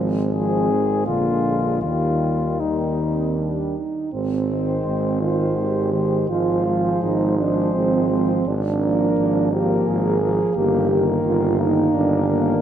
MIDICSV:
0, 0, Header, 1, 6, 480
1, 0, Start_track
1, 0, Key_signature, -3, "major"
1, 0, Tempo, 735294
1, 697, Tempo, 769231
1, 1170, Time_signature, 3, 2, 24, 8
1, 2137, Tempo, 742574
1, 3097, Tempo, 718563
1, 5977, Tempo, 692042
1, 8366, End_track
2, 0, Start_track
2, 0, Title_t, "Cornet"
2, 0, Program_c, 0, 56
2, 210, Note_on_c, 0, 68, 48
2, 668, Note_off_c, 0, 68, 0
2, 692, Note_on_c, 0, 65, 42
2, 1159, Note_off_c, 0, 65, 0
2, 1166, Note_on_c, 0, 65, 42
2, 1654, Note_on_c, 0, 63, 31
2, 1664, Note_off_c, 0, 65, 0
2, 2134, Note_off_c, 0, 63, 0
2, 2853, Note_on_c, 0, 72, 28
2, 3323, Note_off_c, 0, 72, 0
2, 3332, Note_on_c, 0, 72, 29
2, 3801, Note_off_c, 0, 72, 0
2, 3812, Note_on_c, 0, 72, 28
2, 4047, Note_off_c, 0, 72, 0
2, 4053, Note_on_c, 0, 72, 29
2, 4286, Note_off_c, 0, 72, 0
2, 4290, Note_on_c, 0, 72, 30
2, 4770, Note_off_c, 0, 72, 0
2, 4774, Note_on_c, 0, 72, 31
2, 5245, Note_off_c, 0, 72, 0
2, 5249, Note_on_c, 0, 72, 31
2, 5490, Note_off_c, 0, 72, 0
2, 5734, Note_on_c, 0, 70, 33
2, 6208, Note_off_c, 0, 70, 0
2, 6213, Note_on_c, 0, 70, 35
2, 6688, Note_off_c, 0, 70, 0
2, 6697, Note_on_c, 0, 70, 33
2, 6930, Note_off_c, 0, 70, 0
2, 6934, Note_on_c, 0, 70, 36
2, 7171, Note_off_c, 0, 70, 0
2, 7174, Note_on_c, 0, 70, 37
2, 7647, Note_off_c, 0, 70, 0
2, 7653, Note_on_c, 0, 70, 40
2, 8123, Note_off_c, 0, 70, 0
2, 8131, Note_on_c, 0, 70, 38
2, 8366, Note_off_c, 0, 70, 0
2, 8366, End_track
3, 0, Start_track
3, 0, Title_t, "French horn section"
3, 0, Program_c, 1, 60
3, 0, Note_on_c, 1, 60, 33
3, 187, Note_off_c, 1, 60, 0
3, 213, Note_on_c, 1, 60, 33
3, 686, Note_off_c, 1, 60, 0
3, 699, Note_on_c, 1, 58, 29
3, 1163, Note_off_c, 1, 58, 0
3, 1171, Note_on_c, 1, 58, 26
3, 1545, Note_off_c, 1, 58, 0
3, 1651, Note_on_c, 1, 58, 31
3, 1878, Note_off_c, 1, 58, 0
3, 1888, Note_on_c, 1, 60, 31
3, 2131, Note_off_c, 1, 60, 0
3, 2137, Note_on_c, 1, 62, 33
3, 2384, Note_off_c, 1, 62, 0
3, 2384, Note_on_c, 1, 63, 30
3, 2625, Note_on_c, 1, 60, 42
3, 2627, Note_off_c, 1, 63, 0
3, 3310, Note_off_c, 1, 60, 0
3, 3333, Note_on_c, 1, 65, 43
3, 3573, Note_off_c, 1, 65, 0
3, 3577, Note_on_c, 1, 67, 39
3, 4053, Note_off_c, 1, 67, 0
3, 4057, Note_on_c, 1, 65, 46
3, 4533, Note_off_c, 1, 65, 0
3, 4548, Note_on_c, 1, 63, 47
3, 4784, Note_off_c, 1, 63, 0
3, 4795, Note_on_c, 1, 62, 44
3, 5027, Note_on_c, 1, 60, 45
3, 5032, Note_off_c, 1, 62, 0
3, 5493, Note_off_c, 1, 60, 0
3, 5511, Note_on_c, 1, 62, 47
3, 6225, Note_off_c, 1, 62, 0
3, 6225, Note_on_c, 1, 67, 46
3, 6465, Note_off_c, 1, 67, 0
3, 6467, Note_on_c, 1, 68, 50
3, 6941, Note_off_c, 1, 68, 0
3, 6942, Note_on_c, 1, 67, 59
3, 7301, Note_off_c, 1, 67, 0
3, 7419, Note_on_c, 1, 65, 57
3, 7653, Note_off_c, 1, 65, 0
3, 7659, Note_on_c, 1, 63, 54
3, 7893, Note_on_c, 1, 62, 56
3, 7897, Note_off_c, 1, 63, 0
3, 8366, Note_off_c, 1, 62, 0
3, 8366, End_track
4, 0, Start_track
4, 0, Title_t, "Trombone section"
4, 0, Program_c, 2, 61
4, 0, Note_on_c, 2, 56, 36
4, 192, Note_off_c, 2, 56, 0
4, 227, Note_on_c, 2, 56, 29
4, 693, Note_off_c, 2, 56, 0
4, 700, Note_on_c, 2, 56, 26
4, 1163, Note_off_c, 2, 56, 0
4, 1173, Note_on_c, 2, 55, 26
4, 1650, Note_off_c, 2, 55, 0
4, 1657, Note_on_c, 2, 55, 26
4, 2396, Note_off_c, 2, 55, 0
4, 2864, Note_on_c, 2, 56, 27
4, 3326, Note_off_c, 2, 56, 0
4, 3334, Note_on_c, 2, 56, 30
4, 3802, Note_off_c, 2, 56, 0
4, 3810, Note_on_c, 2, 56, 27
4, 4046, Note_off_c, 2, 56, 0
4, 4056, Note_on_c, 2, 56, 28
4, 4291, Note_off_c, 2, 56, 0
4, 4299, Note_on_c, 2, 56, 32
4, 4777, Note_off_c, 2, 56, 0
4, 4787, Note_on_c, 2, 56, 31
4, 5257, Note_off_c, 2, 56, 0
4, 5265, Note_on_c, 2, 56, 30
4, 5498, Note_off_c, 2, 56, 0
4, 5740, Note_on_c, 2, 58, 31
4, 6211, Note_off_c, 2, 58, 0
4, 6219, Note_on_c, 2, 58, 37
4, 6691, Note_off_c, 2, 58, 0
4, 6705, Note_on_c, 2, 58, 33
4, 6929, Note_off_c, 2, 58, 0
4, 6938, Note_on_c, 2, 58, 37
4, 7168, Note_off_c, 2, 58, 0
4, 7176, Note_on_c, 2, 58, 38
4, 7646, Note_off_c, 2, 58, 0
4, 7654, Note_on_c, 2, 58, 39
4, 8124, Note_off_c, 2, 58, 0
4, 8136, Note_on_c, 2, 58, 41
4, 8366, Note_off_c, 2, 58, 0
4, 8366, End_track
5, 0, Start_track
5, 0, Title_t, "Trombone"
5, 0, Program_c, 3, 57
5, 0, Note_on_c, 3, 53, 32
5, 108, Note_off_c, 3, 53, 0
5, 219, Note_on_c, 3, 53, 34
5, 458, Note_on_c, 3, 51, 32
5, 468, Note_off_c, 3, 53, 0
5, 696, Note_on_c, 3, 50, 29
5, 706, Note_off_c, 3, 51, 0
5, 1165, Note_off_c, 3, 50, 0
5, 1169, Note_on_c, 3, 51, 26
5, 1648, Note_off_c, 3, 51, 0
5, 1653, Note_on_c, 3, 51, 27
5, 2394, Note_off_c, 3, 51, 0
5, 2857, Note_on_c, 3, 51, 31
5, 3324, Note_off_c, 3, 51, 0
5, 3333, Note_on_c, 3, 51, 29
5, 3801, Note_off_c, 3, 51, 0
5, 3809, Note_on_c, 3, 51, 28
5, 4046, Note_off_c, 3, 51, 0
5, 4052, Note_on_c, 3, 53, 28
5, 4288, Note_off_c, 3, 53, 0
5, 4292, Note_on_c, 3, 53, 30
5, 4774, Note_off_c, 3, 53, 0
5, 4782, Note_on_c, 3, 53, 32
5, 5254, Note_off_c, 3, 53, 0
5, 5261, Note_on_c, 3, 53, 31
5, 5496, Note_off_c, 3, 53, 0
5, 5739, Note_on_c, 3, 53, 34
5, 6210, Note_off_c, 3, 53, 0
5, 6222, Note_on_c, 3, 53, 36
5, 6693, Note_off_c, 3, 53, 0
5, 6698, Note_on_c, 3, 53, 38
5, 6932, Note_off_c, 3, 53, 0
5, 6944, Note_on_c, 3, 51, 31
5, 7176, Note_off_c, 3, 51, 0
5, 7185, Note_on_c, 3, 51, 41
5, 7652, Note_off_c, 3, 51, 0
5, 7661, Note_on_c, 3, 51, 41
5, 8127, Note_off_c, 3, 51, 0
5, 8140, Note_on_c, 3, 51, 38
5, 8366, Note_off_c, 3, 51, 0
5, 8366, End_track
6, 0, Start_track
6, 0, Title_t, "Tuba"
6, 0, Program_c, 4, 58
6, 0, Note_on_c, 4, 32, 37
6, 672, Note_off_c, 4, 32, 0
6, 700, Note_on_c, 4, 34, 31
6, 1173, Note_on_c, 4, 39, 29
6, 1183, Note_off_c, 4, 34, 0
6, 2414, Note_off_c, 4, 39, 0
6, 2624, Note_on_c, 4, 32, 39
6, 3040, Note_off_c, 4, 32, 0
6, 3097, Note_on_c, 4, 32, 34
6, 3519, Note_off_c, 4, 32, 0
6, 3576, Note_on_c, 4, 32, 35
6, 3996, Note_off_c, 4, 32, 0
6, 4056, Note_on_c, 4, 32, 42
6, 4485, Note_off_c, 4, 32, 0
6, 4545, Note_on_c, 4, 32, 42
6, 4972, Note_off_c, 4, 32, 0
6, 5025, Note_on_c, 4, 32, 38
6, 5446, Note_off_c, 4, 32, 0
6, 5506, Note_on_c, 4, 32, 45
6, 5922, Note_off_c, 4, 32, 0
6, 5983, Note_on_c, 4, 32, 41
6, 6409, Note_off_c, 4, 32, 0
6, 6468, Note_on_c, 4, 32, 47
6, 6828, Note_off_c, 4, 32, 0
6, 6946, Note_on_c, 4, 31, 48
6, 7365, Note_off_c, 4, 31, 0
6, 7423, Note_on_c, 4, 31, 49
6, 7842, Note_off_c, 4, 31, 0
6, 7902, Note_on_c, 4, 31, 50
6, 8323, Note_off_c, 4, 31, 0
6, 8366, End_track
0, 0, End_of_file